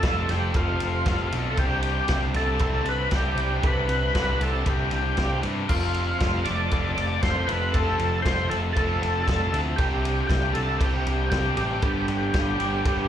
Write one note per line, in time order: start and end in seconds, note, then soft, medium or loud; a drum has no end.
0.00 0.25 F1 loud
0.00 0.28 F2 medium
0.00 0.28 C3 medium
0.00 0.27 F3 medium
0.00 0.29 C4 medium
0.00 0.33 A4 loud
0.00 0.27 A5 loud
0.00 kick loud
0.00 snare loud
0.00 ride loud
0.00 cowbell medium
0.05 0.29 F4 medium
0.05 0.29 A4 medium
0.28 0.50 F1 loud
0.28 0.53 F2 medium
0.28 0.54 C3 medium
0.28 0.54 F3 loud
0.28 0.55 C4 loud
0.28 0.55 F4 loud
0.28 0.54 G4 loud
0.28 0.56 A4 loud
0.28 snare soft
0.28 ride medium
0.33 0.55 G5 medium
0.54 0.76 F1 loud
0.54 1.04 F2 medium
0.54 1.05 C3 medium
0.54 1.05 F3 loud
0.54 1.07 C4 loud
0.54 1.29 F4 medium
0.54 1.06 F4 loud
0.54 1.07 A4 loud
0.54 kick loud
0.54 ride loud
0.54 cowbell loud
0.59 1.30 F5 medium
0.80 1.02 F1 medium
0.80 ride medium
1.05 1.28 F1 medium
1.05 1.29 F2 medium
1.05 1.30 C3 loud
1.05 1.30 F3 medium
1.05 1.32 C4 medium
1.05 1.31 F4 medium
1.05 1.32 A4 loud
1.05 kick loud
1.05 snare loud
1.05 ride loud
1.05 cowbell medium
1.30 1.54 B1 medium
1.30 1.55 F2 medium
1.30 1.56 C3 medium
1.30 1.56 F3 medium
1.30 1.57 C4 loud
1.30 1.57 F4 loud
1.30 1.57 A4 loud
1.30 ride medium
1.50 1.58 A4 medium
1.50 1.59 A5 medium
1.57 2.00 C2 loud
1.57 2.09 C3 loud
1.57 2.09 G3 loud
1.57 2.09 C4 loud
1.57 2.10 D4 loud
1.57 2.10 G4 loud
1.57 kick loud
1.57 ride loud
1.57 cowbell medium
1.61 2.07 G5 medium
1.83 ride medium
2.08 2.30 C2 loud
2.08 2.34 C3 medium
2.08 2.35 G3 medium
2.08 2.36 C4 medium
2.08 2.36 D4 medium
2.08 2.37 G4 loud
2.08 2.22 G4 medium
2.08 kick loud
2.08 snare loud
2.08 ride loud
2.08 cowbell medium
2.14 2.21 G5 medium
2.34 2.56 C2 loud
2.34 2.59 C3 medium
2.34 2.60 G3 loud
2.34 2.61 C4 loud
2.34 2.62 D4 medium
2.34 2.62 G4 loud
2.34 2.89 A4 loud
2.34 snare soft
2.34 ride medium
2.40 2.85 A5 medium
2.59 2.82 C2 loud
2.59 3.11 C3 loud
2.59 3.12 G3 medium
2.59 3.13 C4 loud
2.59 3.12 D4 loud
2.59 3.13 G4 loud
2.59 kick loud
2.59 ride loud
2.59 cowbell loud
2.84 3.06 C2 medium
2.84 ride medium
2.89 3.14 B4 loud
2.89 3.12 B5 medium
3.11 3.33 C2 loud
3.11 3.37 C3 medium
3.11 3.38 G3 medium
3.11 3.39 C4 loud
3.11 3.38 D4 medium
3.11 3.39 G4 loud
3.11 kick loud
3.11 snare loud
3.11 ride loud
3.11 cowbell medium
3.15 3.66 G4 loud
3.15 3.61 G5 medium
3.35 3.57 C2 medium
3.35 3.63 C3 loud
3.35 3.63 G3 medium
3.35 ride medium
3.39 3.65 C4 loud
3.39 3.65 D4 loud
3.39 3.65 G4 loud
3.63 3.85 C2 loud
3.63 4.14 C3 loud
3.63 4.14 G3 loud
3.63 4.15 C4 loud
3.63 4.15 D4 loud
3.63 4.15 G4 loud
3.63 4.44 B4 loud
3.63 4.38 B5 medium
3.63 kick loud
3.63 ride loud
3.63 cowbell loud
3.88 4.09 C2 medium
3.88 ride medium
4.15 4.36 C2 loud
4.15 4.38 C3 medium
4.15 4.39 G3 medium
4.15 4.40 C4 loud
4.15 4.40 D4 medium
4.15 4.40 G4 loud
4.15 kick loud
4.15 snare loud
4.15 ride loud
4.15 cowbell medium
4.39 4.61 C2 medium
4.39 4.63 C3 medium
4.39 4.63 G3 medium
4.39 4.64 C4 medium
4.39 4.64 D4 medium
4.39 4.65 G4 loud
4.39 4.66 A4 loud
4.39 ride medium
4.44 4.66 A5 medium
4.64 4.87 C2 loud
4.64 5.15 C3 medium
4.64 5.16 G3 medium
4.64 5.17 C4 loud
4.64 5.17 D4 loud
4.64 5.17 G4 loud
4.64 kick loud
4.64 ride loud
4.64 cowbell loud
4.69 5.41 G4 medium
4.69 5.41 G5 medium
4.91 5.13 C2 medium
4.91 ride medium
5.16 5.39 C2 medium
5.16 5.40 C3 medium
5.16 5.41 G3 medium
5.16 5.42 C4 medium
5.16 5.42 D4 medium
5.16 5.42 G4 medium
5.16 kick loud
5.16 snare loud
5.16 ride loud
5.16 cowbell medium
5.41 5.64 G2 medium
5.41 5.66 C3 medium
5.41 5.67 G3 medium
5.41 5.68 C4 medium
5.41 5.67 D4 loud
5.41 5.67 G4 loud
5.41 ride medium
5.68 6.12 F1 medium
5.68 6.19 F2 medium
5.68 6.19 C3 loud
5.68 6.20 F3 loud
5.68 6.20 C4 loud
5.68 6.18 F4 loud
5.68 6.21 F4 loud
5.68 6.21 A4 loud
5.68 6.17 F5 medium
5.68 kick loud
5.68 crash loud
5.68 cowbell medium
5.94 ride medium
6.19 6.42 F1 loud
6.19 6.45 F2 medium
6.19 6.45 C3 medium
6.19 6.46 F3 medium
6.19 6.47 C4 medium
6.19 6.46 F4 loud
6.19 6.47 F4 medium
6.19 6.48 A4 medium
6.19 6.43 F5 medium
6.19 kick loud
6.19 snare loud
6.19 ride loud
6.19 cowbell medium
6.45 6.67 F1 loud
6.45 6.71 F2 medium
6.45 6.72 C3 medium
6.45 6.71 F3 medium
6.45 6.72 C4 medium
6.45 6.72 F4 medium
6.45 6.73 A4 medium
6.45 6.93 D5 loud
6.45 6.93 D6 loud
6.45 snare soft
6.45 ride loud
6.71 6.92 F1 medium
6.71 7.22 F2 medium
6.71 7.23 C3 loud
6.71 7.22 F3 medium
6.71 7.24 C4 loud
6.71 7.23 F4 loud
6.71 7.24 A4 loud
6.71 kick loud
6.71 ride loud
6.71 cowbell loud
6.95 7.18 F1 medium
6.95 7.22 D5 loud
6.95 7.21 D6 medium
6.95 ride medium
7.21 7.44 F1 loud
7.21 7.47 F2 medium
7.21 7.47 C3 medium
7.21 7.48 F3 medium
7.21 7.49 C4 medium
7.21 7.49 F4 medium
7.21 7.50 A4 medium
7.21 7.49 C5 loud
7.21 7.46 C6 medium
7.21 kick loud
7.21 snare loud
7.21 ride loud
7.21 cowbell medium
7.47 7.70 F1 medium
7.47 7.71 F2 medium
7.47 7.72 C3 medium
7.47 7.73 F3 medium
7.47 7.75 C4 loud
7.47 7.75 F4 loud
7.47 7.75 A4 loud
7.47 7.74 B4 loud
7.47 7.71 B5 medium
7.47 ride medium
7.72 7.95 F1 loud
7.72 8.23 F2 loud
7.72 8.24 C3 loud
7.72 8.24 F3 loud
7.72 8.25 C4 loud
7.72 8.20 A4 loud
7.72 8.20 A5 medium
7.72 kick loud
7.72 ride loud
7.72 cowbell loud
7.76 8.25 F4 loud
7.76 8.25 A4 loud
7.99 8.20 F1 loud
7.99 ride medium
8.22 8.46 F1 loud
8.22 8.50 F2 medium
8.22 8.51 C3 medium
8.22 8.49 F3 medium
8.22 8.51 C4 medium
8.22 8.50 F4 medium
8.22 8.50 C5 loud
8.22 8.48 C6 medium
8.22 kick loud
8.22 ride loud
8.22 cowbell medium
8.26 8.50 A4 medium
8.26 snare loud
8.48 8.71 F1 loud
8.48 8.75 F2 medium
8.48 8.74 F3 medium
8.48 8.74 C4 medium
8.48 8.75 F4 medium
8.48 8.61 A4 medium
8.48 8.75 A4 medium
8.48 8.55 A5 medium
8.48 ride medium
8.52 8.76 C3 medium
8.73 8.97 F1 medium
8.73 9.26 F2 loud
8.73 9.26 F3 loud
8.73 9.26 C4 loud
8.73 9.27 F4 loud
8.73 9.22 A4 loud
8.73 9.27 A4 loud
8.73 9.22 A5 medium
8.73 kick loud
8.73 ride loud
8.73 cowbell loud
8.77 9.27 C3 loud
9.01 9.22 F1 medium
9.01 ride medium
9.23 9.48 F1 loud
9.23 9.52 F3 medium
9.23 9.52 C4 medium
9.23 9.61 A4 loud
9.23 9.61 A5 medium
9.23 cowbell medium
9.28 9.53 F2 loud
9.28 9.53 C3 medium
9.28 9.53 F4 medium
9.28 9.53 A4 medium
9.28 kick loud
9.28 snare loud
9.28 ride loud
9.53 9.74 D2 loud
9.53 9.77 F2 medium
9.53 9.76 C3 medium
9.53 9.77 F3 medium
9.53 9.77 C4 loud
9.53 9.78 F4 loud
9.53 9.78 A4 loud
9.53 ride medium
9.76 10.21 C2 loud
9.76 10.27 C3 medium
9.76 10.29 G3 loud
9.76 10.29 C4 loud
9.76 10.30 D4 loud
9.76 10.26 G4 loud
9.76 10.30 G4 loud
9.76 10.25 G5 medium
9.76 kick loud
9.76 ride loud
9.76 cowbell loud
10.05 ride medium
10.27 10.51 C2 medium
10.27 10.54 C3 medium
10.27 10.55 G3 medium
10.27 10.55 C4 medium
10.27 10.56 D4 medium
10.27 10.52 G4 medium
10.27 10.56 G4 medium
10.27 10.52 G5 medium
10.27 kick loud
10.27 snare loud
10.27 ride loud
10.27 cowbell medium
10.53 10.77 C2 loud
10.53 10.79 C3 medium
10.53 10.80 G3 medium
10.53 10.80 C4 medium
10.53 10.81 D4 medium
10.53 10.81 G4 loud
10.53 10.81 A4 medium
10.53 10.78 A5 medium
10.53 ride medium
10.78 11.02 C2 medium
10.78 11.30 C3 loud
10.78 11.31 G3 loud
10.78 11.32 C4 loud
10.78 11.32 D4 loud
10.78 11.29 G4 loud
10.78 11.33 G4 loud
10.78 11.27 G5 medium
10.78 kick loud
10.78 ride loud
10.78 cowbell loud
11.06 11.28 C2 medium
11.06 ride medium
11.30 11.53 C2 medium
11.30 11.55 C3 medium
11.30 11.56 G3 medium
11.30 11.56 C4 medium
11.30 11.56 D4 loud
11.30 11.56 G4 loud
11.30 11.57 G4 loud
11.30 11.55 G5 medium
11.30 kick loud
11.30 snare loud
11.30 ride loud
11.30 cowbell medium
11.56 11.79 A1 loud
11.56 11.81 C3 loud
11.56 11.82 G3 loud
11.56 11.82 C4 loud
11.56 11.82 D4 loud
11.56 13.08 G4 loud
11.56 11.82 G4 loud
11.56 13.08 G5 medium
11.56 ride medium
11.81 12.04 G1 loud
11.81 12.32 G2 loud
11.81 12.33 D3 loud
11.81 12.33 G3 loud
11.81 12.34 B3 loud
11.81 12.34 D4 loud
11.81 12.35 G4 loud
11.81 kick loud
11.81 ride loud
11.81 cowbell loud
12.08 12.29 G1 loud
12.08 ride medium
12.33 12.56 G1 loud
12.33 12.57 G2 medium
12.33 12.58 D3 medium
12.33 12.58 G3 loud
12.33 12.59 B3 medium
12.33 12.59 D4 medium
12.33 12.60 G4 medium
12.33 kick loud
12.33 snare loud
12.33 ride loud
12.33 cowbell medium
12.58 12.81 G1 loud
12.58 12.84 G2 medium
12.58 12.84 D3 medium
12.58 12.85 G3 medium
12.58 12.86 B3 medium
12.58 12.86 D4 medium
12.58 12.86 G4 loud
12.58 ride medium
12.85 13.07 G1 medium
12.85 13.08 G2 medium
12.85 13.08 D3 medium
12.85 13.08 G3 loud
12.85 13.08 B3 loud
12.85 13.08 D4 loud
12.85 13.08 G4 loud
12.85 kick loud
12.85 ride loud
12.85 cowbell loud